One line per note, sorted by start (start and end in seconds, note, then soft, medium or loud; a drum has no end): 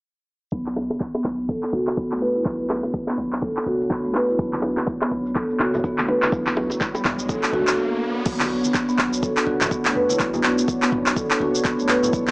0.52 0.92 B1 loud
0.52 8.22 B3 medium
0.52 0.65 B3 medium
0.52 8.22 D4 medium
0.52 8.22 F#4 medium
0.52 8.22 C#5 medium
0.52 kick loud
0.52 low bongo medium
0.52 shaker medium
0.66 clap medium
0.76 high bongo loud
0.76 low bongo medium
0.90 0.98 F#1 medium
0.90 high bongo medium
0.90 shaker medium
1.00 kick loud
1.00 clap medium
1.00 low bongo medium
1.00 shaker medium
1.14 1.24 B3 loud
1.14 high bongo loud
1.14 shaker soft
1.24 1.57 B1 medium
1.24 kick medium
1.24 clap medium
1.24 low bongo medium
1.39 shaker medium
1.49 1.62 A4 medium
1.49 kick loud
1.49 low bongo medium
1.49 shaker medium
1.63 clap medium
1.63 shaker soft
1.73 2.13 F#1 medium
1.73 1.81 F#4 medium
1.73 low bongo medium
1.87 clap medium
1.87 high bongo medium
1.87 shaker medium
1.97 2.05 B3 medium
1.97 kick loud
1.97 low bongo medium
1.97 shaker medium
2.11 2.19 B1 medium
2.11 2.21 A3 medium
2.11 clap medium
2.11 shaker soft
2.22 2.34 B4 medium
2.22 low bongo medium
2.35 2.41 E4 medium
2.35 shaker medium
2.45 2.85 B1 loud
2.45 2.58 B3 medium
2.45 kick loud
2.45 clap medium
2.45 low bongo medium
2.45 shaker medium
2.60 shaker soft
2.70 clap medium
2.70 high bongo medium
2.70 low bongo medium
2.83 2.91 F#1 medium
2.83 high bongo medium
2.83 shaker medium
2.94 kick loud
2.94 low bongo medium
2.94 shaker medium
3.07 3.17 B3 medium
3.07 clap medium
3.07 high bongo medium
3.07 shaker soft
3.18 3.51 B1 medium
3.18 kick medium
3.18 low bongo loud
3.33 clap medium
3.33 shaker medium
3.42 3.55 A4 medium
3.42 kick loud
3.42 low bongo medium
3.42 shaker medium
3.57 clap medium
3.57 shaker soft
3.66 4.06 F#1 medium
3.66 3.74 F#4 medium
3.66 low bongo medium
3.81 shaker medium
3.90 3.98 B3 medium
3.90 kick loud
3.90 clap medium
3.90 low bongo medium
3.90 shaker medium
4.05 4.12 B1 medium
4.05 4.14 A3 medium
4.05 shaker soft
4.13 4.28 B4 medium
4.13 clap medium
4.13 high bongo medium
4.13 low bongo loud
4.29 4.35 E4 medium
4.29 shaker medium
4.39 4.79 B1 loud
4.39 4.52 B3 medium
4.39 kick loud
4.39 riser medium
4.39 low bongo medium
4.39 shaker medium
4.53 clap medium
4.53 muted conga soft
4.53 high conga loud
4.53 shaker soft
4.62 high bongo loud
4.62 low bongo medium
4.77 4.85 F#1 medium
4.77 clap medium
4.77 high bongo medium
4.77 high conga medium
4.77 shaker medium
4.87 kick loud
4.87 low bongo medium
4.87 shaker medium
5.02 5.11 B3 loud
5.02 clap medium
5.02 high bongo loud
5.02 shaker soft
5.11 5.44 B1 medium
5.11 kick medium
5.11 low bongo medium
5.11 muted conga soft
5.26 shaker medium
5.35 5.49 A4 medium
5.35 kick loud
5.35 clap medium
5.35 low bongo medium
5.35 muted conga soft
5.35 shaker medium
5.50 shaker soft
5.60 5.99 F#1 medium
5.60 5.68 F#4 loud
5.60 clap medium
5.60 low bongo loud
5.60 muted conga medium
5.74 high bongo medium
5.74 high conga medium
5.74 low conga loud
5.74 shaker medium
5.84 5.92 B3 medium
5.84 kick loud
5.84 low bongo medium
5.84 shaker medium
5.98 6.06 B1 medium
5.98 6.08 A3 medium
5.98 clap medium
5.98 muted conga soft
5.98 high conga loud
5.98 shaker soft
6.08 6.21 B4 medium
6.08 low bongo medium
6.22 6.28 E4 medium
6.22 clap medium
6.22 muted conga medium
6.22 high conga medium
6.22 shaker medium
6.32 6.72 B1 loud
6.32 6.45 B3 medium
6.32 kick loud
6.32 low bongo medium
6.32 shaker medium
6.46 clap medium
6.46 muted conga medium
6.46 high conga loud
6.46 shaker soft
6.57 high bongo loud
6.57 low bongo medium
6.70 6.78 F#1 medium
6.70 high bongo medium
6.70 high conga medium
6.70 shaker medium
6.80 kick loud
6.80 clap medium
6.80 low bongo medium
6.80 muted conga soft
6.80 shaker medium
6.95 7.04 B3 loud
6.95 high bongo medium
6.95 shaker soft
7.05 7.38 B1 medium
7.05 kick medium
7.05 clap medium
7.05 low bongo medium
7.05 muted conga medium
7.05 high conga medium
7.05 low conga loud
7.19 shaker medium
7.29 7.42 A4 medium
7.29 kick loud
7.29 low bongo medium
7.29 muted conga soft
7.29 high conga medium
7.29 shaker medium
7.43 clap medium
7.43 shaker soft
7.53 7.77 F#1 medium
7.53 7.61 F#4 loud
7.53 low bongo medium
7.53 muted conga soft
7.53 high conga medium
7.67 clap medium
7.67 shaker medium
8.25 8.65 B1 loud
8.25 12.31 B3 medium
8.25 8.39 B3 medium
8.25 12.31 D4 medium
8.25 12.09 F#4 medium
8.25 12.31 C#5 medium
8.25 kick loud
8.25 crash medium
8.25 shaker medium
8.40 clap medium
8.40 muted conga soft
8.40 high conga loud
8.40 shaker soft
8.64 8.72 F#1 medium
8.64 high conga medium
8.64 shaker medium
8.74 kick loud
8.74 clap medium
8.74 muted conga soft
8.74 shaker medium
8.89 8.98 B3 loud
8.89 shaker soft
8.98 9.31 B1 medium
8.98 kick medium
8.98 clap medium
8.98 muted conga medium
9.13 shaker medium
9.23 9.36 A4 medium
9.23 kick loud
9.23 muted conga soft
9.23 shaker medium
9.37 clap medium
9.37 shaker soft
9.47 9.87 F#1 medium
9.47 9.55 F#4 loud
9.47 muted conga medium
9.61 clap medium
9.61 high conga medium
9.61 low conga loud
9.61 shaker medium
9.71 9.79 B3 medium
9.71 kick loud
9.71 shaker medium
9.85 9.93 B1 medium
9.85 9.95 A3 medium
9.85 clap loud
9.85 muted conga soft
9.85 high conga loud
9.85 shaker soft
9.95 10.08 B4 loud
9.95 mid tom medium
10.09 10.15 E4 medium
10.09 muted conga medium
10.09 high conga medium
10.09 shaker medium
10.19 10.59 B1 loud
10.19 10.33 B3 medium
10.19 kick loud
10.19 clap medium
10.19 shaker medium
10.33 muted conga medium
10.33 high conga loud
10.33 shaker soft
10.43 clap medium
10.58 10.66 F#1 medium
10.58 high conga medium
10.58 shaker medium
10.68 kick loud
10.68 muted conga soft
10.68 shaker medium
10.82 10.91 B3 loud
10.82 clap medium
10.82 shaker soft
10.92 11.25 B1 medium
10.92 kick medium
10.92 mid tom medium
10.92 muted conga medium
10.92 high conga medium
10.92 low conga loud
11.06 clap medium
11.06 shaker medium
11.17 11.29 A4 medium
11.17 kick loud
11.17 muted conga soft
11.17 high conga medium
11.17 shaker medium
11.31 clap medium
11.31 shaker soft
11.40 11.81 F#1 medium
11.40 11.48 F#4 loud
11.40 muted conga medium
11.40 high conga medium
11.55 shaker medium
11.65 11.73 B3 medium
11.65 kick loud
11.65 clap medium
11.65 shaker medium
11.79 11.87 B1 medium
11.79 11.89 A3 medium
11.79 muted conga soft
11.79 shaker soft
11.89 12.02 B4 loud
11.89 clap loud
11.89 mid tom medium
12.03 12.09 E4 medium
12.03 muted conga medium
12.03 low conga medium
12.03 shaker medium
12.13 12.31 B1 loud
12.13 12.26 B3 medium
12.13 12.31 E4 medium
12.13 kick loud
12.13 shaker medium
12.27 clap medium
12.27 muted conga soft
12.27 high conga loud
12.27 shaker soft